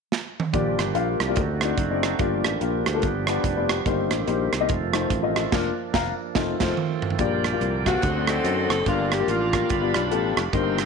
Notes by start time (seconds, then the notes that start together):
0.12 snare
0.40 mid tom
0.53 A#1 A#2 F3 G3 A#3 D4 F4 G4 D5, kick, closed hi-hat
0.78 G1, cross-stick, closed hi-hat
0.94 A#1 A#3 F4 G4 F5, closed hi-hat
1.20 C2, cross-stick, closed hi-hat
1.28 A#3 F4 G4 D5
1.36 D2 D3 A3 C4 D#4 F#4, kick, closed hi-hat
1.61 C4 D#4 F#4 D5, cross-stick, closed hi-hat
1.78 F#1, kick, closed hi-hat
1.91 C4 D#4 F#4 D5
2.03 cross-stick, closed hi-hat
2.19 G1 G2 F3 G3 A#3 F4 G4 D5, kick, closed hi-hat
2.44 A1, cross-stick, closed hi-hat
2.61 A#1 A#3 F4 G4 A#4, closed hi-hat
2.86 D2, cross-stick, closed hi-hat
2.94 A#3 F4 G4 A4
3.02 G1 G2 F3 B3 G4, kick, closed hi-hat
3.27 B3 F4 G4 D5, cross-stick, closed hi-hat
3.44 F1, kick, closed hi-hat
3.56 B3 F4 G4 D5
3.69 cross-stick, closed hi-hat
3.85 G1 G2 D#3 G3 A#3 C4 D#4 G4 C5, kick, closed hi-hat
4.11 A1, cross-stick, closed hi-hat
4.27 A#1 A#3 D#4 G4 C5, closed hi-hat
4.53 C2, cross-stick, closed hi-hat
4.60 A#3 D#4 G4 D#5
4.69 F1 D#3 F3 A3 F4, kick, closed hi-hat
4.93 A3 D#4 F4 C5, cross-stick, closed hi-hat
5.10 A1, kick, closed hi-hat
5.22 A3 D#4 F4 D#5
5.36 cross-stick, closed hi-hat
5.51 F1 A#3 D4 F4 D5, kick, snare, crash
5.94 F1 F5 A#5, kick, snare
6.35 F1 D#3 A3 C4 D#4 F4 C5, kick, snare
6.60 F1 A3 D#4 F4 C5, kick, snare, crash
6.77 mid tom
7.02 floor tom
7.10 floor tom
7.19 A#1 A#2 D3 F3 G3 A#3 F4 G4 A#4 D5 G5, kick, closed hi-hat
7.44 cross-stick, closed hi-hat
7.52 A#3 F4 G4 D5
7.61 C2, closed hi-hat
7.86 A3 A#3 C4 F4 F#4 G4 F5, kick, cross-stick, closed hi-hat
8.02 D2 D3 F#3 C4 D#4 F#4 D5 D#5 C6, kick, closed hi-hat
8.16 C4 D#4 F#4 D5
8.27 C4 F#4 A4, cross-stick, closed hi-hat
8.44 F#2 C4 D#4 F#4 C5, closed hi-hat
8.70 F#1 A4, cross-stick, closed hi-hat
8.86 G1 G2 F3 G3 A#3 D4 F4 G4 D5 F5 A#5, kick, closed hi-hat
9.12 G4, cross-stick, closed hi-hat
9.20 A#3 F4 G4 A#4
9.28 A1 A#3 D4 F4, closed hi-hat
9.53 A#3 F4 G4 A#4, kick, cross-stick, closed hi-hat
9.69 G1 G2 B2 F3 D4 B5, kick, closed hi-hat
9.81 B3 F4 G4 D5
9.94 B1 B5, cross-stick, closed hi-hat
10.11 A1 B3 F4 G4 A4 G5, closed hi-hat
10.37 F1, cross-stick, closed hi-hat
10.53 G1 G2 D#3 G3 A#3 C4 D#4 G4 A#4 C5 D#5 G5 C6, kick, closed hi-hat
10.78 cross-stick, closed hi-hat